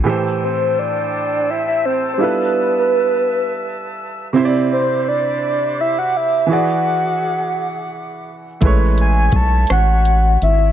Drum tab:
HH |------|------|------|------|
SD |------|------|------|------|
BD |------|------|------|------|

HH |xxxxxx|
SD |---r--|
BD |o-o---|